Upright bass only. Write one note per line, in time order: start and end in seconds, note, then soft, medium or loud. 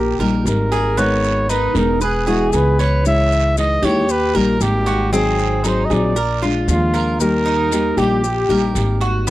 0.00 0.16 A#1 medium
0.19 0.44 A#1 medium
0.45 1.69 G#1 medium
1.75 2.49 E1 medium
2.53 3.76 C#2 medium
3.82 4.31 D#2 medium
4.35 4.59 A#1 medium
4.61 5.84 G#1 loud
5.90 6.64 A#1 medium
6.68 7.91 D#2 loud
7.97 8.46 A#1 medium
8.49 8.74 A#1 medium
8.75 9.30 G#1 medium